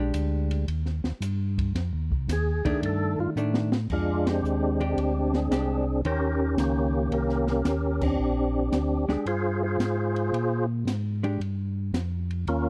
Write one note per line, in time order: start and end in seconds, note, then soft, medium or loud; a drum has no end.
0.00 0.12 A#1 medium
0.00 0.64 G#3 medium
0.00 0.65 D4 medium
0.00 0.65 G4 medium
0.13 0.66 D2 loud
0.13 hi-hat pedal medium
0.13 ride medium
0.51 ride medium
0.67 1.01 D#2 medium
0.67 ride medium
0.86 snare soft
1.04 1.13 D#2 soft
1.04 snare soft
1.20 1.73 G2 medium
1.20 hi-hat pedal medium
1.20 ride medium
1.58 kick medium
1.58 ride medium
1.75 1.92 F2 medium
1.75 snare soft
1.75 ride medium
1.93 2.11 D#2 medium
2.11 2.27 C2 medium
2.11 kick medium
2.28 2.62 D#2 loud
2.28 snare soft
2.28 hi-hat pedal medium
2.28 ride medium
2.32 2.81 G#4 medium
2.65 2.73 D#2 soft
2.65 3.33 D#3 medium
2.65 3.33 A3 medium
2.65 3.33 D4 medium
2.65 kick medium
2.65 ride medium
2.82 3.16 G2 medium
2.82 3.19 A4 medium
2.82 ride medium
3.19 3.27 G2 soft
3.19 3.30 F4 medium
3.35 3.88 A2 medium
3.35 3.69 D#3 medium
3.35 3.69 A3 medium
3.35 3.70 D4 medium
3.35 hi-hat pedal medium
3.54 snare medium
3.72 snare medium
3.89 4.42 F2 medium
3.89 4.94 G#3 medium
3.89 4.27 D4 medium
3.89 4.29 F4 medium
3.89 kick medium
3.89 crash medium
4.27 4.81 C4 medium
4.27 4.81 D4 medium
4.27 4.81 G4 medium
4.27 snare medium
4.27 ride medium
4.43 4.95 D#2 medium
4.43 hi-hat pedal soft
4.81 5.48 G#3 medium
4.81 5.33 C4 medium
4.81 5.48 D4 soft
4.81 5.34 D4 medium
4.81 5.48 G4 medium
4.81 5.36 G4 medium
4.81 ride soft
4.96 5.49 D2 medium
4.96 ride medium
5.33 6.01 C4 medium
5.33 6.01 D4 medium
5.33 6.01 G#4 medium
5.33 snare soft
5.50 6.02 C2 medium
5.50 5.84 G#3 soft
5.50 5.84 D4 medium
5.50 5.84 G4 medium
5.50 snare medium
5.50 hi-hat pedal medium
5.50 ride medium
6.04 6.56 D#2 medium
6.04 7.55 D#3 medium
6.04 7.55 C#4 medium
6.04 6.59 C#4 medium
6.04 7.56 G4 medium
6.04 6.59 G4 medium
6.04 6.55 A#4 medium
6.04 7.56 C5 medium
6.04 ride soft
6.57 7.10 C#2 medium
6.57 7.62 A#3 medium
6.57 7.13 C#4 medium
6.57 7.12 G4 medium
6.57 snare medium
6.57 hi-hat pedal medium
6.57 ride medium
7.11 7.63 C2 medium
7.11 7.48 C#4 medium
7.11 7.48 G4 medium
7.11 7.48 A#4 medium
7.11 ride soft
7.29 snare soft
7.47 8.16 C#4 medium
7.47 8.01 G4 medium
7.47 8.04 A#4 medium
7.47 snare soft
7.64 8.17 D#2 medium
7.64 snare medium
7.64 hi-hat pedal medium
7.64 ride medium
8.01 9.05 C4 medium
8.01 9.05 D4 medium
8.01 9.12 G4 medium
8.01 kick medium
8.01 crash medium
8.18 8.70 A#1 medium
8.72 9.06 D2 medium
8.72 snare medium
8.72 hi-hat pedal medium
8.72 ride medium
9.08 9.17 D2 soft
9.08 9.24 G#3 medium
9.08 9.25 D4 medium
9.08 9.25 G4 medium
9.08 9.26 G#4 medium
9.08 snare soft
9.25 9.78 G2 medium
9.25 9.63 F4 medium
9.25 9.63 G#4 medium
9.25 9.60 C5 loud
9.25 ride medium
9.63 10.66 F4 medium
9.63 10.66 G#4 medium
9.63 10.66 C5 loud
9.79 10.31 G#2 medium
9.79 snare medium
9.79 hi-hat pedal soft
9.79 ride medium
10.16 ride soft
10.32 10.85 A#2 medium
10.32 ride medium
10.85 11.38 G#2 medium
10.85 snare medium
10.85 hi-hat pedal soft
10.85 ride medium
11.23 11.39 G#3 medium
11.23 11.39 D4 medium
11.23 11.39 G4 medium
11.23 ride soft
11.40 11.92 G2 medium
11.40 ride soft
11.93 12.45 F2 medium
11.93 snare medium
11.93 hi-hat pedal soft
11.93 ride medium
12.31 ride soft
12.47 12.69 D#2 medium
12.47 12.69 A#3 medium
12.47 12.69 C#4 medium
12.47 12.69 F4 medium
12.47 ride medium